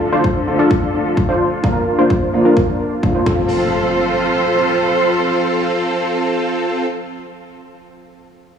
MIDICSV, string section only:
0, 0, Header, 1, 2, 480
1, 0, Start_track
1, 0, Key_signature, -1, "major"
1, 0, Tempo, 465116
1, 1688, Time_signature, 4, 2, 24, 8
1, 8861, End_track
2, 0, Start_track
2, 0, Title_t, "String section"
2, 0, Program_c, 0, 48
2, 0, Note_on_c, 0, 50, 75
2, 0, Note_on_c, 0, 62, 69
2, 0, Note_on_c, 0, 65, 68
2, 0, Note_on_c, 0, 69, 85
2, 1669, Note_off_c, 0, 62, 0
2, 1670, Note_off_c, 0, 50, 0
2, 1670, Note_off_c, 0, 69, 0
2, 1689, Note_on_c, 0, 62, 69
2, 1690, Note_on_c, 0, 58, 76
2, 3333, Note_off_c, 0, 65, 0
2, 3352, Note_off_c, 0, 58, 0
2, 3352, Note_off_c, 0, 62, 0
2, 3369, Note_on_c, 0, 53, 72
2, 3370, Note_on_c, 0, 65, 70
2, 3370, Note_on_c, 0, 69, 67
2, 3370, Note_on_c, 0, 72, 81
2, 7080, Note_off_c, 0, 53, 0
2, 7080, Note_off_c, 0, 65, 0
2, 7080, Note_off_c, 0, 69, 0
2, 7080, Note_off_c, 0, 72, 0
2, 8861, End_track
0, 0, End_of_file